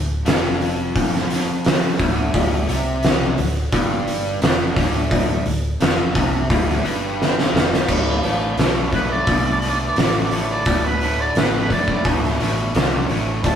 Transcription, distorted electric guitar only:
0.00 0.19 D2 medium
0.25 1.98 F2 loud
1.99 2.33 D2 medium
2.34 2.68 D2 loud
2.69 3.37 C3 medium
3.38 3.66 D2 medium
3.73 4.41 G2 loud
4.42 4.76 F2 medium
4.76 5.45 D2 medium
5.47 5.74 D2 medium
5.81 6.14 F2 loud
6.15 6.49 C3 loud
6.49 6.84 D2 loud
6.84 7.53 G2 loud
7.54 7.88 F2 medium
7.88 8.20 D2 medium
7.88 8.20 A2 medium
8.23 8.55 D2 medium
8.23 8.55 A2 medium
8.57 8.89 D2 medium
8.57 8.89 B2 medium
8.92 9.24 D2 medium
8.92 9.24 A2 medium
9.26 9.58 D2 medium
9.26 9.58 B2 medium
9.61 9.93 D2 medium
9.61 9.93 B2 medium
9.97 10.28 D2 medium
9.97 10.28 C3 medium
10.31 10.63 D2 medium
10.31 10.63 A2 medium
10.66 10.98 D2 medium
10.66 10.98 A2 medium
11.01 11.32 D2 medium
11.01 11.33 A2 medium
11.36 11.67 D2 medium
11.36 11.68 B2 medium
11.70 12.02 D2 medium
11.70 12.02 A2 medium
12.05 12.36 D2 medium
12.05 12.37 B2 medium
12.39 12.71 D2 medium
12.39 12.71 B2 medium
12.74 13.06 D2 medium
12.74 13.06 C3 medium
13.09 13.41 D2 medium
13.09 13.41 A2 medium
13.43 13.55 D2 medium
13.43 13.55 A2 medium

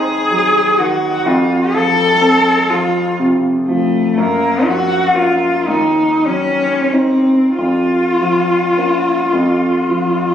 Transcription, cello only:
0.00 0.80 G#4 medium
0.78 1.28 F#4 medium
1.27 1.74 F4 medium
1.73 2.71 A4 medium
2.70 3.20 F4 medium
3.67 4.19 A3 medium
4.17 4.67 A#3 medium
4.66 5.16 F#4 medium
5.15 5.68 F4 medium
5.66 6.28 D#4 medium
6.26 6.93 C#4 medium
6.92 7.56 C4 medium
7.57 10.35 F4 medium

